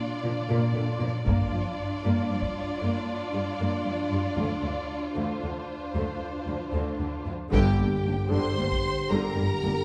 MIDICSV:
0, 0, Header, 1, 9, 480
1, 0, Start_track
1, 0, Key_signature, -2, "minor"
1, 0, Tempo, 516796
1, 1174, Time_signature, 12, 3, 24, 8
1, 3094, Tempo, 524934
1, 9049, End_track
2, 0, Start_track
2, 0, Title_t, "Violin section"
2, 0, Program_c, 0, 48
2, 6943, Note_on_c, 0, 79, 66
2, 7633, Note_off_c, 0, 79, 0
2, 7669, Note_on_c, 0, 84, 70
2, 8380, Note_on_c, 0, 82, 60
2, 8383, Note_off_c, 0, 84, 0
2, 9049, Note_off_c, 0, 82, 0
2, 9049, End_track
3, 0, Start_track
3, 0, Title_t, "Violin section"
3, 0, Program_c, 1, 48
3, 0, Note_on_c, 1, 65, 49
3, 0, Note_on_c, 1, 74, 45
3, 1141, Note_off_c, 1, 74, 0
3, 1179, Note_off_c, 1, 65, 0
3, 1202, Note_on_c, 1, 74, 43
3, 1204, Note_on_c, 1, 65, 44
3, 4753, Note_off_c, 1, 74, 0
3, 4781, Note_on_c, 1, 72, 34
3, 6732, Note_off_c, 1, 65, 0
3, 6757, Note_off_c, 1, 72, 0
3, 6935, Note_on_c, 1, 67, 70
3, 7629, Note_off_c, 1, 67, 0
3, 7651, Note_on_c, 1, 72, 58
3, 8359, Note_off_c, 1, 72, 0
3, 8383, Note_on_c, 1, 70, 50
3, 9049, Note_off_c, 1, 70, 0
3, 9049, End_track
4, 0, Start_track
4, 0, Title_t, "French horn section"
4, 0, Program_c, 2, 60
4, 6927, Note_on_c, 2, 50, 61
4, 6927, Note_on_c, 2, 67, 57
4, 9049, Note_off_c, 2, 50, 0
4, 9049, Note_off_c, 2, 67, 0
4, 9049, End_track
5, 0, Start_track
5, 0, Title_t, "Viola section"
5, 0, Program_c, 3, 48
5, 0, Note_on_c, 3, 62, 47
5, 227, Note_on_c, 3, 53, 36
5, 301, Note_off_c, 3, 53, 0
5, 470, Note_on_c, 3, 58, 45
5, 685, Note_off_c, 3, 58, 0
5, 711, Note_on_c, 3, 50, 38
5, 786, Note_off_c, 3, 50, 0
5, 952, Note_on_c, 3, 53, 34
5, 1026, Note_off_c, 3, 53, 0
5, 1142, Note_off_c, 3, 62, 0
5, 1188, Note_on_c, 3, 58, 53
5, 1191, Note_on_c, 3, 62, 43
5, 1405, Note_off_c, 3, 58, 0
5, 1425, Note_on_c, 3, 53, 32
5, 1500, Note_off_c, 3, 53, 0
5, 1899, Note_on_c, 3, 58, 50
5, 2118, Note_off_c, 3, 58, 0
5, 2148, Note_on_c, 3, 53, 32
5, 2223, Note_off_c, 3, 53, 0
5, 2626, Note_on_c, 3, 58, 41
5, 2843, Note_off_c, 3, 58, 0
5, 3106, Note_on_c, 3, 55, 30
5, 3179, Note_off_c, 3, 55, 0
5, 3341, Note_on_c, 3, 58, 36
5, 3559, Note_off_c, 3, 58, 0
5, 3584, Note_on_c, 3, 53, 34
5, 3657, Note_off_c, 3, 53, 0
5, 3831, Note_on_c, 3, 55, 36
5, 3904, Note_off_c, 3, 55, 0
5, 4063, Note_on_c, 3, 57, 40
5, 4282, Note_off_c, 3, 57, 0
5, 4294, Note_on_c, 3, 50, 30
5, 4368, Note_off_c, 3, 50, 0
5, 4763, Note_on_c, 3, 57, 39
5, 4993, Note_off_c, 3, 57, 0
5, 5019, Note_on_c, 3, 50, 29
5, 5092, Note_off_c, 3, 50, 0
5, 5489, Note_on_c, 3, 57, 42
5, 5718, Note_off_c, 3, 57, 0
5, 5978, Note_on_c, 3, 53, 30
5, 6052, Note_off_c, 3, 53, 0
5, 6212, Note_on_c, 3, 57, 40
5, 6438, Note_off_c, 3, 57, 0
5, 6450, Note_on_c, 3, 50, 31
5, 6523, Note_off_c, 3, 50, 0
5, 6689, Note_on_c, 3, 53, 30
5, 6726, Note_off_c, 3, 62, 0
5, 6763, Note_off_c, 3, 53, 0
5, 6926, Note_on_c, 3, 50, 71
5, 6927, Note_on_c, 3, 55, 59
5, 7156, Note_off_c, 3, 50, 0
5, 7157, Note_off_c, 3, 55, 0
5, 7181, Note_on_c, 3, 55, 30
5, 7183, Note_on_c, 3, 58, 30
5, 7254, Note_off_c, 3, 55, 0
5, 7256, Note_off_c, 3, 58, 0
5, 7420, Note_on_c, 3, 58, 32
5, 7420, Note_on_c, 3, 62, 31
5, 7493, Note_off_c, 3, 58, 0
5, 7493, Note_off_c, 3, 62, 0
5, 7660, Note_on_c, 3, 50, 55
5, 7664, Note_on_c, 3, 55, 41
5, 7886, Note_off_c, 3, 50, 0
5, 7888, Note_off_c, 3, 55, 0
5, 7899, Note_on_c, 3, 55, 35
5, 7903, Note_on_c, 3, 58, 35
5, 7972, Note_off_c, 3, 55, 0
5, 7976, Note_off_c, 3, 58, 0
5, 8375, Note_on_c, 3, 55, 47
5, 8381, Note_on_c, 3, 50, 44
5, 8599, Note_off_c, 3, 55, 0
5, 8602, Note_off_c, 3, 50, 0
5, 8611, Note_on_c, 3, 58, 31
5, 8615, Note_on_c, 3, 55, 36
5, 8684, Note_off_c, 3, 58, 0
5, 8689, Note_off_c, 3, 55, 0
5, 8863, Note_on_c, 3, 58, 36
5, 8864, Note_on_c, 3, 62, 35
5, 8936, Note_off_c, 3, 58, 0
5, 8937, Note_off_c, 3, 62, 0
5, 9049, End_track
6, 0, Start_track
6, 0, Title_t, "Cello section"
6, 0, Program_c, 4, 48
6, 219, Note_on_c, 4, 46, 35
6, 294, Note_off_c, 4, 46, 0
6, 464, Note_on_c, 4, 46, 49
6, 538, Note_off_c, 4, 46, 0
6, 695, Note_on_c, 4, 46, 31
6, 770, Note_off_c, 4, 46, 0
6, 926, Note_on_c, 4, 46, 36
6, 1000, Note_off_c, 4, 46, 0
6, 1175, Note_on_c, 4, 43, 55
6, 1249, Note_off_c, 4, 43, 0
6, 1411, Note_on_c, 4, 43, 31
6, 1485, Note_off_c, 4, 43, 0
6, 1905, Note_on_c, 4, 43, 48
6, 1979, Note_off_c, 4, 43, 0
6, 2137, Note_on_c, 4, 43, 33
6, 2211, Note_off_c, 4, 43, 0
6, 2617, Note_on_c, 4, 43, 38
6, 2691, Note_off_c, 4, 43, 0
6, 3107, Note_on_c, 4, 43, 34
6, 3180, Note_off_c, 4, 43, 0
6, 3335, Note_on_c, 4, 43, 40
6, 3408, Note_off_c, 4, 43, 0
6, 3571, Note_on_c, 4, 43, 31
6, 3645, Note_off_c, 4, 43, 0
6, 3804, Note_on_c, 4, 43, 31
6, 3877, Note_off_c, 4, 43, 0
6, 4047, Note_on_c, 4, 38, 43
6, 4120, Note_off_c, 4, 38, 0
6, 4288, Note_on_c, 4, 38, 29
6, 4361, Note_off_c, 4, 38, 0
6, 4776, Note_on_c, 4, 38, 40
6, 4849, Note_off_c, 4, 38, 0
6, 5020, Note_on_c, 4, 38, 28
6, 5093, Note_off_c, 4, 38, 0
6, 5494, Note_on_c, 4, 38, 40
6, 5567, Note_off_c, 4, 38, 0
6, 5974, Note_on_c, 4, 38, 29
6, 6047, Note_off_c, 4, 38, 0
6, 6205, Note_on_c, 4, 38, 43
6, 6278, Note_off_c, 4, 38, 0
6, 6444, Note_on_c, 4, 38, 29
6, 6517, Note_off_c, 4, 38, 0
6, 6690, Note_on_c, 4, 38, 28
6, 6763, Note_off_c, 4, 38, 0
6, 6934, Note_on_c, 4, 43, 69
6, 7161, Note_off_c, 4, 43, 0
6, 7171, Note_on_c, 4, 43, 33
6, 7244, Note_off_c, 4, 43, 0
6, 7419, Note_on_c, 4, 43, 29
6, 7492, Note_off_c, 4, 43, 0
6, 7655, Note_on_c, 4, 43, 50
6, 7728, Note_off_c, 4, 43, 0
6, 7888, Note_on_c, 4, 43, 34
6, 7961, Note_off_c, 4, 43, 0
6, 8375, Note_on_c, 4, 43, 44
6, 8448, Note_off_c, 4, 43, 0
6, 8602, Note_on_c, 4, 43, 31
6, 8675, Note_off_c, 4, 43, 0
6, 8847, Note_on_c, 4, 43, 33
6, 8920, Note_off_c, 4, 43, 0
6, 9049, End_track
7, 0, Start_track
7, 0, Title_t, "Double bass section"
7, 0, Program_c, 5, 48
7, 1177, Note_on_c, 5, 31, 45
7, 1399, Note_off_c, 5, 31, 0
7, 4048, Note_on_c, 5, 38, 43
7, 4274, Note_off_c, 5, 38, 0
7, 6942, Note_on_c, 5, 31, 61
7, 7165, Note_off_c, 5, 31, 0
7, 7185, Note_on_c, 5, 31, 34
7, 7258, Note_off_c, 5, 31, 0
7, 7434, Note_on_c, 5, 31, 34
7, 7507, Note_off_c, 5, 31, 0
7, 7679, Note_on_c, 5, 31, 51
7, 7753, Note_off_c, 5, 31, 0
7, 7917, Note_on_c, 5, 31, 37
7, 7990, Note_off_c, 5, 31, 0
7, 8387, Note_on_c, 5, 31, 47
7, 8461, Note_off_c, 5, 31, 0
7, 8626, Note_on_c, 5, 31, 33
7, 8700, Note_off_c, 5, 31, 0
7, 8877, Note_on_c, 5, 31, 35
7, 8950, Note_off_c, 5, 31, 0
7, 9049, End_track
8, 0, Start_track
8, 0, Title_t, "Tuba"
8, 0, Program_c, 6, 58
8, 6928, Note_on_c, 6, 31, 68
8, 7158, Note_off_c, 6, 31, 0
8, 7179, Note_on_c, 6, 31, 29
8, 7277, Note_off_c, 6, 31, 0
8, 7413, Note_on_c, 6, 31, 35
8, 7512, Note_off_c, 6, 31, 0
8, 7651, Note_on_c, 6, 31, 43
8, 7750, Note_off_c, 6, 31, 0
8, 7894, Note_on_c, 6, 31, 32
8, 7992, Note_off_c, 6, 31, 0
8, 8370, Note_on_c, 6, 31, 49
8, 8468, Note_off_c, 6, 31, 0
8, 8619, Note_on_c, 6, 31, 36
8, 8714, Note_off_c, 6, 31, 0
8, 8858, Note_on_c, 6, 31, 35
8, 8952, Note_off_c, 6, 31, 0
8, 9049, End_track
9, 0, Start_track
9, 0, Title_t, "Taiko and cinematic ensemble drums"
9, 1177, Note_on_c, 9, 41, 46
9, 1270, Note_off_c, 9, 41, 0
9, 2250, Note_on_c, 9, 41, 27
9, 2343, Note_off_c, 9, 41, 0
9, 6935, Note_on_c, 9, 41, 52
9, 7026, Note_off_c, 9, 41, 0
9, 8021, Note_on_c, 9, 41, 32
9, 8112, Note_off_c, 9, 41, 0
9, 9049, End_track
0, 0, End_of_file